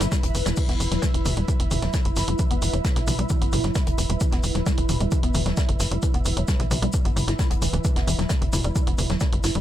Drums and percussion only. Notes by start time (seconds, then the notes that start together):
0.00 snare, closed hi-hat, shaker
0.12 kick, snare, closed hi-hat, shaker
0.23 closed hi-hat
0.35 open hi-hat, shaker
0.46 snare, closed hi-hat, shaker
0.57 kick, closed hi-hat, crash, shaker
0.69 snare, closed hi-hat
0.80 open hi-hat, shaker
0.92 snare, closed hi-hat
1.02 kick, snare, closed hi-hat, shaker
1.14 closed hi-hat
1.25 open hi-hat, mid tom, shaker
1.37 closed hi-hat
1.48 kick, closed hi-hat, shaker
1.60 closed hi-hat
1.71 open hi-hat, mid tom, shaker
1.82 snare, closed hi-hat
1.94 kick, snare, closed hi-hat, shaker
2.05 closed hi-hat
2.16 snare, open hi-hat, shaker
2.28 closed hi-hat
2.39 kick, closed hi-hat, shaker
2.51 closed hi-hat
2.62 open hi-hat, shaker
2.74 closed hi-hat
2.85 kick, snare, closed hi-hat, shaker
2.96 snare, closed hi-hat
3.07 open hi-hat, mid tom, shaker
3.19 closed hi-hat
3.30 kick, closed hi-hat, shaker
3.42 closed hi-hat
3.52 open hi-hat, mid tom, shaker
3.64 snare, closed hi-hat
3.75 kick, snare, closed hi-hat, shaker
3.87 closed hi-hat
3.98 open hi-hat, shaker
4.10 closed hi-hat
4.21 kick, closed hi-hat, shaker
4.31 snare, closed hi-hat
4.43 open hi-hat, shaker
4.54 snare, closed hi-hat
4.66 kick, snare, closed hi-hat, shaker
4.78 closed hi-hat
4.89 open hi-hat, mid tom, shaker
5.01 closed hi-hat
5.12 kick, closed hi-hat, shaker
5.23 closed hi-hat
5.34 open hi-hat, mid tom, shaker
5.46 snare, closed hi-hat
5.57 kick, snare, closed hi-hat, shaker
5.69 closed hi-hat
5.80 snare, open hi-hat, shaker
5.92 closed hi-hat
6.03 kick, closed hi-hat, shaker
6.14 closed hi-hat
6.25 open hi-hat, shaker
6.37 closed hi-hat
6.48 kick, snare, closed hi-hat, shaker
6.59 snare, closed hi-hat
6.71 open hi-hat, mid tom, shaker
6.83 closed hi-hat
6.93 kick, closed hi-hat, shaker
7.05 closed hi-hat
7.17 open hi-hat, mid tom, shaker
7.28 snare, closed hi-hat
7.39 kick, snare, closed hi-hat, shaker
7.51 closed hi-hat
7.62 open hi-hat, shaker
7.74 closed hi-hat
7.85 kick, closed hi-hat, shaker
7.96 snare, closed hi-hat
8.08 open hi-hat, shaker
8.19 snare, closed hi-hat
8.29 kick, snare, closed hi-hat, shaker
8.42 closed hi-hat
8.53 open hi-hat, mid tom, shaker
8.64 closed hi-hat
8.76 kick, closed hi-hat, shaker
8.87 closed hi-hat
8.98 open hi-hat, mid tom, shaker
9.10 snare, closed hi-hat
9.21 kick, snare, closed hi-hat, shaker
9.33 closed hi-hat
9.43 snare, open hi-hat, shaker
9.55 closed hi-hat